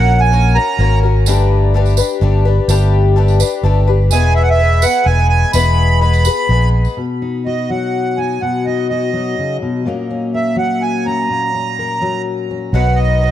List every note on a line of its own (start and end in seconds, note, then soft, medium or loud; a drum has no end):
0.00 0.57 A#1 loud
0.00 0.30 A#3 medium
0.00 0.32 C#4 medium
0.00 0.32 F#4 medium
0.00 0.33 A#4 medium
0.00 0.21 F#5 medium
0.21 0.57 G#5 loud
0.32 0.55 A#3 medium
0.32 0.56 C#4 medium
0.32 0.56 F#4 medium
0.32 0.54 A#4 medium
0.55 0.79 C#4 soft
0.55 0.79 F#4 soft
0.55 0.79 A#4 medium
0.55 0.99 A#5 medium
0.79 1.26 G#1 medium
0.79 1.03 A#3 medium
0.79 1.03 C#4 medium
0.79 1.03 F#4 medium
0.79 1.02 A#4 medium
1.03 1.28 C#4 soft
1.03 1.27 F#4 soft
1.03 1.27 A#4 soft
1.26 2.00 G1 loud
1.26 1.74 G3 medium
1.26 1.73 A3 medium
1.26 1.74 D4 medium
1.26 1.75 G4 loud
1.26 1.76 B4 loud
1.26 tambourine loud
1.74 1.98 A3 medium
1.74 1.98 D4 medium
1.74 1.98 G4 medium
1.74 1.96 B4 medium
1.86 tambourine soft
1.97 2.21 D4 soft
1.97 2.22 G4 medium
1.97 2.21 B4 medium
1.97 tambourine loud
2.21 2.58 G1 medium
2.21 2.45 A3 medium
2.21 2.46 D4 medium
2.21 2.45 G4 medium
2.21 2.44 B4 medium
2.45 2.69 D4 soft
2.45 2.69 G4 soft
2.45 2.69 B4 medium
2.68 3.42 G1 loud
2.68 3.16 G3 loud
2.68 3.15 A3 medium
2.68 3.16 D4 medium
2.68 3.16 G4 loud
2.68 3.18 B4 loud
2.68 tambourine medium
3.16 3.40 A3 medium
3.16 3.40 D4 medium
3.16 3.40 G4 medium
3.16 3.39 B4 medium
3.28 tambourine soft
3.40 3.63 D4 soft
3.40 3.64 G4 medium
3.40 3.64 B4 medium
3.40 tambourine medium
3.63 4.11 G1 medium
3.63 3.87 A3 medium
3.63 3.88 D4 medium
3.63 3.88 G4 medium
3.63 3.86 B4 medium
3.88 4.12 D4 soft
3.88 4.12 G4 soft
3.88 4.11 B4 medium
4.11 4.84 E1 loud
4.11 4.59 E3 medium
4.11 4.58 G#3 medium
4.11 4.59 B3 medium
4.11 4.60 G#4 medium
4.11 4.61 B4 medium
4.11 4.34 G#5 medium
4.11 tambourine loud
4.36 4.43 E5 medium
4.42 4.49 F#5 medium
4.50 4.84 E5 loud
4.59 4.83 G#3 medium
4.59 4.83 B3 medium
4.59 4.83 G#4 medium
4.59 4.81 B4 medium
4.82 5.05 B3 soft
4.82 5.06 G#4 soft
4.82 5.06 B4 soft
4.82 5.07 F#5 medium
4.82 tambourine loud
5.05 5.43 E1 medium
5.05 5.53 G#3 medium
5.05 5.54 B3 medium
5.05 5.54 G#4 medium
5.05 5.55 B4 medium
5.05 5.27 G#5 medium
5.29 5.51 G#5 medium
5.53 6.28 E1 loud
5.53 6.01 E3 medium
5.53 6.00 G#3 medium
5.53 6.01 B3 medium
5.53 6.01 G#4 medium
5.53 6.02 B4 medium
5.53 6.00 B5 loud
5.53 tambourine loud
6.01 6.25 G#3 medium
6.01 6.26 B3 medium
6.01 6.26 G#4 medium
6.01 6.24 B4 medium
6.01 6.69 B5 medium
6.13 tambourine soft
6.25 6.49 B3 soft
6.25 6.50 G#4 soft
6.25 6.49 B4 medium
6.25 tambourine loud
6.37 tambourine soft
6.49 6.86 A#1 medium
6.49 6.97 G#3 medium
6.49 6.98 B3 medium
6.49 6.98 G#4 medium
6.49 6.98 B4 medium
6.85 tambourine soft
6.97 8.41 B2 soft
7.22 8.17 D#4 soft
7.46 8.90 F#4 soft
7.46 7.70 D#5 medium
7.70 9.13 F#3 soft
7.70 8.19 F#5 medium
8.17 8.38 D#4 soft
8.17 8.42 G#5 medium
8.41 9.38 B2 soft
8.41 8.66 F#5 medium
8.66 9.83 D#4 soft
8.66 8.88 D#5 medium
8.89 9.88 F#4 soft
8.89 9.57 D#5 medium
9.13 9.86 F#3 soft
9.39 9.62 C#3 soft
9.62 9.86 B2 medium
9.86 11.27 A#2 medium
9.86 10.56 F#3 soft
9.86 11.28 A#3 soft
9.86 10.10 C#4 soft
9.86 10.34 A#4 soft
10.11 11.05 C#4 soft
10.34 11.27 A#4 soft
10.34 10.56 E5 medium
10.56 12.01 F#3 soft
10.56 10.83 F#5 medium
10.82 11.06 G#5 medium
11.06 11.53 C#4 soft
11.06 12.22 A#5 medium
11.30 12.71 A#2 soft
11.55 12.50 C#4 soft
11.79 12.72 A#4 soft
12.01 12.71 F#3 soft
12.51 12.74 C#4 soft
12.73 13.31 B1 medium
12.73 13.22 B2 medium
12.73 13.22 D#3 medium
12.73 13.21 F#3 medium
12.73 13.21 B3 medium
12.73 13.22 D#4 medium
12.73 13.22 B4 medium
12.73 12.99 F#5 medium
12.96 13.31 D#5 medium
13.21 13.31 F#3 soft
13.21 13.31 B3 soft
13.21 13.31 D#4 soft
13.21 13.31 B4 medium